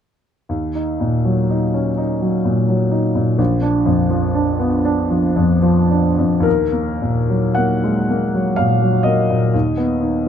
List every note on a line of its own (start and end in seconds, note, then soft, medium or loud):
0.49 3.35 D#2 soft
0.75 1.15 D#4 soft
1.00 1.40 A#2 soft
1.25 1.64 F#3 soft
1.50 1.88 D#4 soft
1.74 1.98 C#4 soft
1.97 2.36 D#4 soft
2.22 2.60 F#3 soft
2.45 2.83 A#2 soft
2.69 3.07 F#3 soft
2.91 3.29 D#4 soft
3.15 3.39 A#2 soft
3.38 6.41 A#1 soft
3.62 4.00 D4 soft
3.86 4.25 F2 soft
4.10 4.49 F3 soft
4.35 4.74 D4 soft
4.60 4.84 B3 soft
4.85 5.26 D4 soft
5.10 5.52 F3 soft
5.36 5.80 F2 soft
5.63 6.07 F3 soft
5.91 6.35 D4 soft
6.18 6.45 F2 soft
6.40 9.47 D#2 soft
6.40 7.57 A#4 soft
6.72 7.19 A#3 soft
7.01 7.47 A#2 soft
7.30 7.74 F#3 soft
7.55 7.99 A#3 soft
7.55 8.57 F#5 soft
7.84 8.09 G#3 soft
8.10 8.49 A#3 soft
8.34 8.73 F#3 soft
8.56 8.96 A#2 soft
8.56 9.05 F5 medium
8.82 9.20 F#3 soft
9.03 9.44 A#3 soft
9.03 10.29 D#5 medium
9.30 9.54 A#2 soft
9.54 10.29 D#2 soft
9.77 10.16 B3 soft
10.01 10.29 D#3 soft